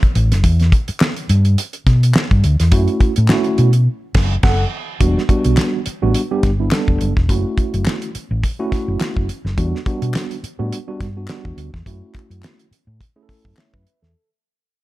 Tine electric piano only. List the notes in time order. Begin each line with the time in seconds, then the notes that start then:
2.72 A3 C#4 E4 F#4
3.29 A3 C#4 E4 F#4
4.44 A4 F#5
5.00 G3 B3 D4 F#4
5.29 G3 B3 D4 F#4
6.02 G3 B3 D4 F#4
6.31 G3 B3 D4 G4
6.60 G3 B3 D4 E4
6.73 G3 B3 D4 A4
7.30 A3 C#4 E4 F#4
8.59 A3 C#4 E4 F#4
9.58 G3 B3 D4 F#4
9.86 G3 B3 D4 F#4
10.59 G3 B3 D4 F#4
10.87 G3 B3 D4 F#4
11.17 G3 B3 D4 F#4
11.29 G3 B3 D4 F#4
11.86 A3 C#4 E4 F#4
13.16 A3 C#4 E4 G#4
13.23 A4
13.29 A4
13.57 C#5 E5
13.73 B4
14.02 A4